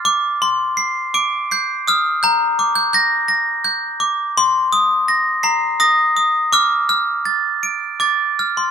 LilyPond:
\new Staff \with { instrumentName = "Glockenspiel" } { \time 3/4 \key c \dorian \tempo 4 = 83 << { d'''8 c'''8 c''''8 d''''8 c''''8 ees'''8 | bes''8 d'''8 g'''8 bes'''8 g'''8 d'''8 | c'''8 ees'''8 bes'''8 c''''8 bes'''8 ees'''8 | d'''8 f'''8 a'''8 d''''8 a'''8 f'''8 | } \\ { r4. d'''8 g'''8 f'''8 | g'''8. g'''16 bes'''4. r8 | r4. bes''8 ees'''4 | f'''2 d'''8. c'''16 | } >> }